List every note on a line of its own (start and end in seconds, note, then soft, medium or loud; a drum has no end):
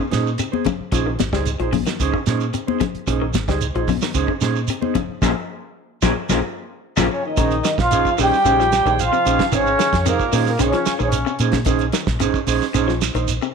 0.00 0.17 C#3 medium
0.11 0.35 A#2 medium
0.11 0.28 C#4 medium
0.11 0.28 D#4 medium
0.11 0.28 G#4 medium
0.11 0.28 C5 medium
0.11 snare medium
0.11 closed hi-hat soft
0.11 shekere medium
0.27 shekere soft
0.38 0.57 C3 medium
0.38 closed hi-hat medium
0.38 shekere medium
0.52 0.68 G#4 soft
0.52 0.68 C5 medium
0.52 muted clean electric guitar stroke soft
0.52 high conga medium
0.65 0.84 C#3 medium
0.65 kick medium
0.65 closed hi-hat soft
0.65 high conga medium
0.65 low conga medium
0.65 shekere soft
0.80 muted fingered electric bass stroke soft
0.92 1.15 A#1 loud
0.92 1.02 F3 medium
0.92 1.09 C#4 medium
0.92 1.09 D#4 medium
0.92 1.09 G#4 medium
0.92 1.09 C5 medium
0.92 kick medium
0.92 closed hi-hat medium
0.92 shekere medium
1.07 1.24 D#3 medium
1.19 1.31 G#1 medium
1.19 snare medium
1.19 closed hi-hat soft
1.19 high conga medium
1.19 shekere medium
1.32 1.56 C#2 medium
1.32 1.51 G3 medium
1.32 1.49 D#4 soft
1.32 1.49 G#4 medium
1.32 1.49 C5 medium
1.32 kick medium
1.32 snare medium
1.32 shekere soft
1.45 closed hi-hat medium
1.45 shekere medium
1.60 1.83 A#1 medium
1.60 1.68 F3 medium
1.60 1.76 D#4 soft
1.60 1.76 G#4 soft
1.60 1.76 C5 medium
1.60 closed hi-hat soft
1.73 1.82 C#3 medium
1.73 kick medium
1.73 open hi-hat medium
1.73 high conga medium
1.73 low conga medium
1.73 shekere soft
1.86 2.05 D#3 medium
1.86 snare medium
1.86 closed hi-hat soft
1.86 shekere medium
2.00 2.12 C#2 medium
2.00 2.16 C#4 medium
2.00 2.16 D#4 medium
2.00 2.17 G#4 medium
2.00 2.17 C5 medium
2.00 kick medium
2.00 closed hi-hat medium
2.00 shekere medium
2.14 2.32 C#3 medium
2.14 kick medium
2.26 2.50 A#2 medium
2.26 2.43 C#4 medium
2.26 2.43 D#4 medium
2.26 2.44 G#4 medium
2.26 2.44 C5 medium
2.26 snare medium
2.26 closed hi-hat soft
2.26 shekere medium
2.40 closed hi-hat soft
2.40 shekere soft
2.54 2.72 C3 medium
2.54 closed hi-hat medium
2.54 shekere medium
2.67 2.84 D#4 soft
2.67 2.84 G#4 soft
2.67 2.83 C5 medium
2.67 high conga medium
2.80 2.98 C#3 medium
2.80 kick medium
2.80 snare soft
2.80 closed hi-hat medium
2.80 high conga medium
2.80 low conga medium
2.80 shekere soft
2.95 muted fingered electric bass stroke soft
2.95 closed hi-hat soft
3.07 3.31 A#1 loud
3.07 3.24 C#4 medium
3.07 3.24 D#4 medium
3.07 3.24 G#4 medium
3.07 3.24 C5 medium
3.07 muted clean electric guitar stroke medium
3.07 kick medium
3.07 closed hi-hat medium
3.07 shekere medium
3.22 3.39 D#3 medium
3.34 3.46 G#1 medium
3.34 snare medium
3.34 closed hi-hat medium
3.34 high conga medium
3.34 shekere medium
3.48 3.71 C#2 medium
3.48 3.66 G3 medium
3.48 3.64 D#4 soft
3.48 3.64 G#4 medium
3.48 3.64 C5 medium
3.48 kick medium
3.48 snare medium
3.48 closed hi-hat soft
3.48 shekere soft
3.61 closed hi-hat medium
3.61 shekere medium
3.75 3.98 A#1 medium
3.75 3.84 F3 medium
3.75 3.91 D#4 soft
3.75 3.91 G#4 soft
3.75 3.91 C5 medium
3.75 closed hi-hat soft
3.88 3.98 C#3 medium
3.88 kick medium
3.88 open hi-hat medium
3.88 high conga medium
3.88 low conga medium
3.88 shekere soft
4.02 4.20 D#3 medium
4.02 snare medium
4.02 shekere medium
4.14 4.26 C#2 medium
4.14 4.31 C#4 medium
4.14 4.31 D#4 medium
4.14 4.31 G#4 medium
4.14 4.31 C5 medium
4.14 kick medium
4.14 closed hi-hat medium
4.14 shekere medium
4.28 4.46 C#3 medium
4.28 kick medium
4.41 4.65 A#2 medium
4.41 4.58 C#4 medium
4.41 4.58 D#4 medium
4.41 4.58 G#4 medium
4.41 4.58 C5 medium
4.41 snare medium
4.41 closed hi-hat soft
4.41 shekere medium
4.56 shekere soft
4.68 4.87 C3 medium
4.68 closed hi-hat medium
4.68 shekere medium
4.82 4.98 D#4 medium
4.82 4.98 G#4 soft
4.82 4.98 C5 medium
4.82 high conga medium
4.95 5.13 C#3 medium
4.95 kick medium
4.95 closed hi-hat soft
4.95 high conga medium
4.95 low conga medium
4.95 shekere soft
5.09 muted fingered electric bass stroke soft
5.22 5.32 A#1 medium
5.22 5.31 A#2 loud
5.22 5.31 C#3 medium
5.22 5.31 F3 medium
5.22 5.31 F4 medium
5.22 5.31 G#4 medium
5.22 5.31 A#4 medium
5.22 kick medium
5.22 snare medium
5.22 low conga medium
5.22 shekere loud
6.02 6.13 A#1 medium
6.02 6.12 A#2 medium
6.02 6.12 C#3 medium
6.02 6.12 F3 medium
6.02 6.12 F4 medium
6.02 6.12 G#4 medium
6.02 6.12 A#4 medium
6.02 kick medium
6.02 snare medium
6.02 low conga medium
6.02 shekere loud
6.29 6.40 A#1 medium
6.29 6.39 A#2 medium
6.29 6.39 C#3 medium
6.29 6.39 F3 medium
6.29 6.39 F4 medium
6.29 6.39 G#4 medium
6.29 6.39 A#4 medium
6.29 kick medium
6.29 snare medium
6.29 low conga medium
6.29 shekere medium
6.97 7.07 A#1 medium
6.97 7.05 A#2 medium
6.97 7.06 C#3 loud
6.97 7.06 F3 medium
6.97 7.06 F4 medium
6.97 7.06 G#4 medium
6.97 7.06 A#4 medium
6.97 kick medium
6.97 snare medium
6.97 low conga loud
6.97 shekere medium
7.11 7.23 C#3 medium
7.11 7.24 C#4 medium
7.11 7.24 C#5 medium
7.26 7.75 D#3 medium
7.26 7.81 D#4 medium
7.26 7.82 D#5 medium
7.37 7.61 A#1 loud
7.37 7.56 D#3 loud
7.37 7.54 C#4 medium
7.37 7.54 D#4 medium
7.37 7.54 G#4 medium
7.37 7.54 C5 medium
7.37 kick medium
7.37 closed hi-hat medium
7.37 shekere medium
7.51 closed hi-hat soft
7.51 shekere soft
7.64 7.83 D#3 medium
7.64 snare medium
7.64 closed hi-hat medium
7.64 shekere medium
7.78 8.01 A#1 medium
7.78 8.19 F3 medium
7.78 8.19 F4 loud
7.78 8.19 F5 loud
7.78 kick medium
7.78 snare medium
7.78 shekere soft
7.91 8.07 C#4 medium
7.91 8.08 D#4 medium
7.91 8.08 G#4 medium
7.91 8.08 C5 medium
7.91 closed hi-hat medium
7.91 shekere loud
8.05 kick medium
8.05 shekere soft
8.18 8.30 A#1 medium
8.18 8.36 D#3 medium
8.18 8.95 G3 loud
8.18 8.34 C#4 medium
8.18 8.35 D#4 medium
8.18 9.02 G4 loud
8.18 8.35 G#4 medium
8.18 8.35 C5 medium
8.18 9.02 G5 loud
8.18 open hi-hat medium
8.18 shekere medium
8.33 shekere soft
8.45 8.80 A#1 loud
8.45 8.55 C#3 medium
8.45 8.61 C#4 medium
8.45 8.61 D#4 medium
8.45 8.62 G#4 medium
8.45 8.62 C5 medium
8.45 closed hi-hat medium
8.45 shekere loud
8.60 8.77 F3 medium
8.60 snare soft
8.60 shekere soft
8.72 snare medium
8.72 closed hi-hat medium
8.72 shekere medium
8.85 9.09 A#1 loud
8.85 9.04 D#3 medium
8.85 9.02 D#4 soft
8.85 9.02 G#4 soft
8.85 9.01 C5 medium
8.85 closed hi-hat soft
8.85 shekere soft
8.99 9.53 F3 medium
8.99 9.55 F4 loud
8.99 9.57 F5 medium
8.99 closed hi-hat medium
8.99 shekere medium
9.13 9.31 C3 medium
9.13 shekere soft
9.25 9.38 A#1 medium
9.25 9.42 C#4 medium
9.25 9.42 D#4 medium
9.25 9.42 G#4 medium
9.25 9.42 C5 medium
9.25 closed hi-hat soft
9.25 shekere medium
9.39 9.48 C#3 medium
9.39 kick medium
9.39 snare medium
9.39 closed hi-hat soft
9.39 shekere soft
9.52 9.76 G#1 loud
9.52 10.06 C#3 medium
9.52 9.71 D#3 loud
9.52 9.69 C#4 medium
9.52 10.07 C#4 loud
9.52 9.69 D#4 medium
9.52 9.69 G#4 medium
9.52 9.69 C5 medium
9.52 10.07 C#5 medium
9.52 kick loud
9.52 closed hi-hat medium
9.52 shekere medium
9.67 shekere soft
9.79 9.97 D#3 medium
9.79 snare medium
9.79 closed hi-hat medium
9.79 shekere medium
9.93 10.16 F2 medium
9.93 kick medium
9.93 snare medium
9.93 closed hi-hat soft
9.93 shekere soft
10.06 10.44 A#2 medium
10.06 10.24 C3 medium
10.06 10.45 A#3 medium
10.06 10.22 D#4 medium
10.06 10.23 G#4 medium
10.06 10.45 A#4 medium
10.06 10.23 C5 medium
10.06 muted clean electric guitar stroke medium
10.06 closed hi-hat medium
10.06 shekere loud
10.20 kick medium
10.20 shekere soft
10.33 10.56 A#2 medium
10.33 10.51 D#3 medium
10.33 10.49 C#4 medium
10.33 10.49 D#4 medium
10.33 10.50 G#4 medium
10.33 10.50 C5 medium
10.33 open hi-hat medium
10.33 shekere medium
10.46 10.59 A#2 medium
10.46 10.63 A#3 medium
10.46 10.64 A#4 medium
10.46 snare soft
10.46 shekere soft
10.59 10.72 A#1 medium
10.59 10.69 C#3 medium
10.59 11.00 C#3 medium
10.59 10.76 C#4 medium
10.59 11.01 C#4 loud
10.59 10.76 D#4 medium
10.59 10.76 G#4 medium
10.59 10.76 C5 medium
10.59 11.02 C#5 medium
10.59 closed hi-hat medium
10.59 shekere loud
10.73 10.91 F3 medium
10.73 snare soft
10.73 closed hi-hat soft
10.73 shekere soft
10.86 muted fingered electric bass stroke soft
10.86 snare medium
10.86 closed hi-hat soft
10.86 shekere medium
10.99 11.23 A#1 loud
10.99 11.38 C#3 medium
10.99 11.18 D#3 medium
10.99 11.38 C#4 medium
10.99 11.16 D#4 soft
10.99 11.16 G#4 medium
10.99 11.16 C5 medium
10.99 11.39 C#5 medium
10.99 shekere soft
11.12 closed hi-hat medium
11.12 shekere loud
11.26 11.45 C3 medium
11.26 shekere soft
11.39 11.63 A#2 loud
11.39 11.56 C#4 medium
11.39 11.57 D#4 medium
11.39 11.57 G#4 medium
11.39 11.57 C5 medium
11.39 closed hi-hat medium
11.39 shekere medium
11.52 11.62 C#3 medium
11.52 kick medium
11.52 snare medium
11.52 closed hi-hat soft
11.52 shekere soft
11.65 11.90 A#1 loud
11.65 11.85 D#3 medium
11.65 11.83 C#4 medium
11.65 11.83 D#4 medium
11.65 11.84 G#4 medium
11.65 11.84 C5 medium
11.65 kick medium
11.65 closed hi-hat medium
11.65 shekere medium
11.79 closed hi-hat soft
11.79 shekere soft
11.92 12.12 D#3 medium
11.92 snare medium
11.92 closed hi-hat medium
11.92 shekere medium
12.07 12.30 A#1 medium
12.07 kick medium
12.07 snare medium
12.07 shekere soft
12.20 12.38 C3 medium
12.20 12.37 C#4 medium
12.20 12.37 D#4 medium
12.20 12.37 G#4 medium
12.20 12.37 C5 medium
12.20 closed hi-hat medium
12.20 shekere loud
12.34 kick medium
12.34 shekere soft
12.47 12.59 A#1 loud
12.47 12.63 C#4 medium
12.47 12.64 D#4 medium
12.47 12.64 G#4 medium
12.47 12.64 C5 medium
12.47 open hi-hat medium
12.47 shekere medium
12.61 snare soft
12.61 shekere soft
12.74 13.09 A#1 loud
12.74 12.91 C#4 medium
12.74 12.91 D#4 medium
12.74 12.91 G#4 medium
12.74 12.91 C5 medium
12.74 muted clean electric guitar stroke medium
12.74 closed hi-hat medium
12.74 shekere loud
12.88 13.06 F3 medium
12.88 snare soft
12.88 shekere soft
13.01 snare medium
13.01 closed hi-hat soft
13.01 shekere medium
13.14 13.38 A#1 loud
13.14 13.33 D#3 medium
13.14 13.31 D#4 soft
13.14 13.31 C5 medium
13.14 closed hi-hat soft
13.14 shekere soft
13.28 closed hi-hat medium
13.28 shekere loud
13.42 13.54 C3 medium
13.42 shekere soft